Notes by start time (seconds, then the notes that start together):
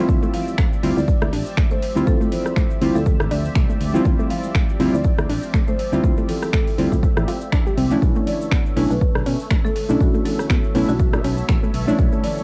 Already playing: G3 C4 E5
0.00 E4 F4
0.08 D2 F3 C4 G4 D5, kick, high conga, cabasa
0.23 A3, cabasa
0.34 F5, open hi-hat, low conga
0.48 high conga, cabasa
0.58 A3, finger snap, kick, cabasa
0.73 cabasa
0.83 D2 G3 C4 E4 F4, open hi-hat
0.97 D2 E4 D5, high conga, cabasa
1.08 kick, cabasa
1.21 D2 E4, cross-stick, cabasa
1.32 A1 D4, open hi-hat, high conga
1.46 cabasa
1.57 A3, finger snap, kick, cabasa
1.71 A3 C5, high conga, cabasa
1.82 C5, open hi-hat
1.95 D2 G3 C4 E4 F4, cabasa
2.07 D2 A4, kick, high conga, cabasa
2.21 A3, cabasa
2.31 C5, open hi-hat, low conga
2.45 cross-stick, high conga, cabasa
2.56 A3, finger snap, kick, cabasa
2.70 cabasa
2.81 D2 G3 C4 E4 F4, open hi-hat
2.95 D2 E4 A4, high conga, cabasa
3.06 kick, cabasa
3.20 A1 E4, cross-stick, cabasa
3.31 D2 D4, open hi-hat, high conga
3.45 cabasa
3.55 C2 A3, finger snap, kick, cabasa
3.70 A3, high conga, cabasa
3.81 D2, open hi-hat
3.94 G3 C4 E4 F4, low conga, cabasa
4.05 D2, kick, high conga, cabasa
4.19 A3, cabasa
4.30 F5, open hi-hat, low conga
4.44 high conga, cabasa
4.55 A3, finger snap, kick, cabasa
4.69 cabasa
4.79 D2 G3 C4 E4 F4, open hi-hat
4.94 D2 E4 D5, high conga, cabasa
5.04 kick, cabasa
5.18 D2 E4, cross-stick, cabasa
5.29 A1 D4, open hi-hat, high conga
5.43 cabasa
5.54 A3, finger snap, kick, cabasa
5.68 A3 C5, high conga, cabasa
5.79 C5, open hi-hat
5.92 D2 G3 C4 E4 F4, cabasa
6.03 D2, kick, high conga, cabasa
6.17 A3, cabasa
6.28 A4, open hi-hat, low conga
6.42 A4, cross-stick, high conga, cabasa
6.53 A3 A4, finger snap, kick, cabasa
6.67 open hi-hat, cabasa
6.78 D2 G3 C4 E4 F4, open hi-hat
6.92 D2 E4, kick, high conga, cabasa
7.03 kick, cabasa
7.17 A1 E4, cross-stick, cabasa
7.28 F4, open hi-hat, high conga
7.41 cabasa
7.52 D4, finger snap, kick, cabasa
7.66 G4, high conga, cabasa
7.77 C2 C4, open hi-hat
7.90 A3 C#4 D4 E4, low conga, cabasa
8.02 B1 D3 B3 A4 C#5 E5, kick, high conga, cabasa
8.15 A3, cabasa
8.27 D5, open hi-hat, low conga
8.41 high conga, cabasa
8.51 B3, finger snap, kick, cabasa
8.66 cabasa
8.76 B1 A3 B3 C#4 D4 E4, open hi-hat
8.90 B1 D4 B4, high conga, cabasa
9.01 kick, cabasa
9.15 B1 D4, cross-stick, cabasa
9.26 B2 C#4, open hi-hat, high conga
9.40 cabasa
9.51 A3, finger snap, kick, cabasa
9.65 A3 A4, high conga, cabasa
9.76 A4, open hi-hat
9.89 B1 A3 C#4 D4 E4, cabasa
10.00 B1 F#4, kick, high conga, cabasa
10.14 A3, cabasa
10.25 A4, open hi-hat, low conga
10.39 cross-stick, high conga, cabasa
10.50 B3, finger snap, kick, cabasa
10.64 cabasa
10.75 B1 A3 B3 C#4 D4 E4, open hi-hat
10.89 B1 D4 F#4, high conga, cabasa
10.99 kick, cabasa
11.13 B2 D4, cross-stick, cabasa
11.24 B1 C#4, open hi-hat, high conga
11.38 cabasa
11.49 A1 A3, finger snap, kick, cabasa
11.63 A3, high conga, cabasa
11.74 B1, open hi-hat
11.87 A3 C#4 D4 E4, low conga, cabasa
11.99 B1, kick, high conga, cabasa
12.12 A3, cabasa
12.24 D5, open hi-hat, low conga
12.37 high conga, cabasa